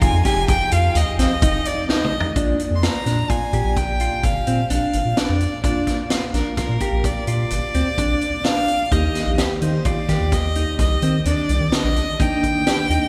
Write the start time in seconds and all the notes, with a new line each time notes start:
Already playing: F3 D#4 G#4
0.01 F1 F4 G#5, kick, closed hi-hat
0.13 F2
0.25 G4 G#5, kick, snare, closed hi-hat
0.37 F1
0.48 G5, kick, closed hi-hat
0.72 F2 F4 F5, closed hi-hat
0.95 D#2 D#5, closed hi-hat
1.18 A#1 C4 D#5, snare, closed hi-hat
1.42 F1 D#4, kick, closed hi-hat
1.65 D5, closed hi-hat
1.82 D5
1.89 D#4 D#5, snare
2.04 mid tom
2.20 floor tom
2.36 A#1 A#3 D4 F4 D5, kick, closed hi-hat
2.60 closed hi-hat
2.71 F2
2.76 C6
2.83 F4 A#5, snare, closed hi-hat
3.06 A#2 D4, snare, closed hi-hat
3.29 F4 G#5, kick, closed hi-hat
3.53 A#2 G4, kick, closed hi-hat
3.65 A#1
3.76 G5, kick, closed hi-hat
4.00 F4, closed hi-hat
4.23 G1 F5, kick, closed hi-hat
4.47 A#2 C4, closed hi-hat
4.70 A#1 D4 F5, closed hi-hat
4.93 G1, closed hi-hat
5.05 A#2
5.17 D4 D5, snare, closed hi-hat
5.29 F2
5.41 closed hi-hat
5.63 A#3 D4 F4 D5 F5, kick, closed hi-hat
5.87 kick, snare, closed hi-hat
6.10 F4, snare, closed hi-hat
6.34 A#1 D4 A#4, snare, closed hi-hat
6.57 A#1 F4 A#4, kick, snare, closed hi-hat
6.69 A#2
6.80 G4, kick, closed hi-hat
6.92 A#1
7.04 D5, kick, closed hi-hat
7.27 A#2 F4 D5, closed hi-hat
7.50 G1, closed hi-hat
7.74 D2 C4, closed hi-hat
7.98 A#1 D4, kick, closed hi-hat
8.21 closed hi-hat
8.44 D4 F5, snare, closed hi-hat
8.68 closed hi-hat
8.92 D#2 D#3 A#3 D#4 G4 D#5, kick, closed hi-hat
9.15 snare, closed hi-hat
9.27 A#1
9.38 G4, snare, closed hi-hat
9.62 D#3 D#4 C5, closed hi-hat
9.85 F4 D5, kick, closed hi-hat
10.09 D#3 G4, kick, snare, closed hi-hat
10.20 D#2
10.32 D#5, kick, snare, closed hi-hat
10.55 D#4, closed hi-hat
10.79 C2 D#5, kick, snare, closed hi-hat
11.02 D#3 C4, closed hi-hat
11.25 D#2 D4 D5, closed hi-hat
11.49 C2, closed hi-hat
11.60 D#3
11.72 D3 D#5, snare, closed hi-hat
11.84 A#1
11.96 closed hi-hat
12.20 D#3 A#3 D4 D#4 G5, kick, closed hi-hat
12.43 kick, closed hi-hat
12.67 G4, snare, closed hi-hat
12.90 D#2 D#4, closed hi-hat